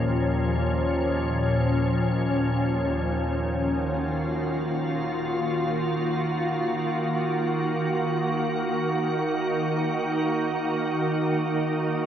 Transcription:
0.00 2.69 D#2 medium
0.00 2.69 A#2 medium
0.00 2.69 F3 medium
0.00 3.71 C#4 medium
2.69 12.06 D#3 medium
3.21 12.06 A#3 medium
3.61 12.06 F#4 medium
3.69 9.10 F4 medium
8.85 12.06 D#4 medium

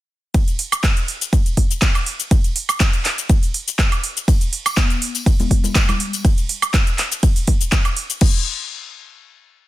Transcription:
0.34 kick loud
0.34 closed hi-hat medium
0.34 ride medium
0.34 shaker medium
0.48 closed hi-hat medium
0.48 shaker soft
0.59 open hi-hat loud
0.72 closed hi-hat soft
0.72 high woodblock medium
0.72 shaker medium
0.84 kick loud
0.84 clap loud
0.84 closed hi-hat medium
0.84 ride medium
0.84 shaker medium
0.97 closed hi-hat medium
0.97 shaker soft
1.08 open hi-hat loud
1.21 closed hi-hat soft
1.21 shaker medium
1.33 kick loud
1.33 closed hi-hat medium
1.33 ride medium
1.33 shaker medium
1.46 closed hi-hat medium
1.46 shaker soft
1.57 kick medium
1.57 open hi-hat loud
1.71 closed hi-hat soft
1.71 shaker medium
1.82 kick loud
1.82 clap loud
1.82 closed hi-hat medium
1.82 ride medium
1.82 shaker medium
1.95 closed hi-hat medium
1.95 high woodblock medium
1.95 shaker soft
2.06 open hi-hat loud
2.20 closed hi-hat soft
2.20 shaker medium
2.31 kick loud
2.31 closed hi-hat medium
2.31 ride medium
2.31 shaker medium
2.44 closed hi-hat medium
2.44 shaker soft
2.56 open hi-hat loud
2.69 closed hi-hat soft
2.69 high woodblock medium
2.69 shaker medium
2.80 kick loud
2.80 clap loud
2.80 closed hi-hat medium
2.80 ride medium
2.80 shaker medium
2.93 closed hi-hat medium
2.93 shaker soft
3.05 clap medium
3.05 open hi-hat loud
3.18 closed hi-hat soft
3.18 shaker medium
3.30 kick loud
3.30 closed hi-hat medium
3.30 ride medium
3.30 shaker medium
3.43 open hi-hat medium
3.43 shaker soft
3.54 open hi-hat loud
3.68 closed hi-hat soft
3.68 shaker medium
3.79 kick loud
3.79 clap loud
3.79 closed hi-hat medium
3.79 ride medium
3.79 shaker medium
3.92 closed hi-hat medium
3.92 high woodblock medium
3.92 shaker soft
4.04 open hi-hat loud
4.17 closed hi-hat soft
4.17 shaker medium
4.28 kick loud
4.28 closed hi-hat medium
4.28 ride medium
4.28 tambourine medium
4.28 shaker medium
4.41 closed hi-hat medium
4.41 tambourine soft
4.41 shaker soft
4.53 open hi-hat loud
4.66 closed hi-hat soft
4.66 tambourine medium
4.66 high woodblock medium
4.66 shaker medium
4.77 kick loud
4.77 clap loud
4.77 closed hi-hat medium
4.77 ride medium
4.77 tambourine medium
4.77 high conga medium
4.77 shaker medium
4.90 closed hi-hat medium
4.90 tambourine soft
4.90 shaker soft
5.02 open hi-hat loud
5.15 closed hi-hat soft
5.15 tambourine medium
5.15 shaker medium
5.26 kick loud
5.26 closed hi-hat medium
5.26 ride medium
5.26 tambourine medium
5.26 shaker medium
5.39 closed hi-hat medium
5.39 tambourine soft
5.39 high conga medium
5.39 low conga medium
5.39 shaker soft
5.51 kick medium
5.51 open hi-hat loud
5.64 closed hi-hat soft
5.64 tambourine medium
5.64 low conga medium
5.64 shaker medium
5.75 kick loud
5.75 clap loud
5.75 closed hi-hat medium
5.75 ride medium
5.75 shaker medium
5.89 closed hi-hat medium
5.89 tambourine soft
5.89 low conga medium
5.89 high woodblock medium
5.89 shaker soft
6.00 open hi-hat loud
6.13 closed hi-hat soft
6.13 tambourine medium
6.13 shaker medium
6.25 kick loud
6.25 closed hi-hat medium
6.25 ride medium
6.25 shaker medium
6.38 closed hi-hat soft
6.38 shaker soft
6.49 open hi-hat loud
6.62 closed hi-hat soft
6.62 high woodblock medium
6.62 shaker medium
6.74 kick loud
6.74 clap loud
6.74 closed hi-hat medium
6.74 ride medium
6.74 shaker medium
6.87 closed hi-hat medium
6.87 shaker soft
6.98 clap medium
6.98 open hi-hat loud
7.12 closed hi-hat soft
7.12 shaker medium
7.23 kick loud
7.23 closed hi-hat medium
7.23 ride medium
7.23 shaker medium
7.36 open hi-hat medium
7.36 shaker soft
7.47 kick medium
7.47 open hi-hat loud
7.61 closed hi-hat soft
7.61 shaker medium
7.72 kick loud
7.72 clap loud
7.72 closed hi-hat medium
7.72 ride medium
7.72 shaker medium
7.85 closed hi-hat medium
7.85 high woodblock medium
7.85 shaker soft
7.97 open hi-hat loud
8.10 closed hi-hat soft
8.10 shaker medium
8.21 kick loud
8.21 crash medium

